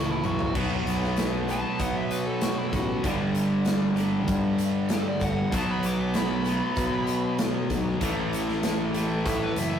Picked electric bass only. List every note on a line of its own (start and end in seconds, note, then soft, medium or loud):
0.00 0.21 C#2 medium
0.24 0.52 B1 medium
0.55 0.81 B1 medium
0.86 1.62 B1 medium
1.80 2.74 B2 medium
2.73 2.98 A1 loud
3.04 4.28 G1 medium
4.28 5.04 G2 loud
5.21 5.47 G1 loud
5.52 5.78 B1 loud
5.84 6.60 B1 medium
6.77 7.71 B2 loud
7.70 7.95 B1 medium
8.01 9.26 A1 medium
9.26 9.51 A2 loud
9.57 9.79 F#1 medium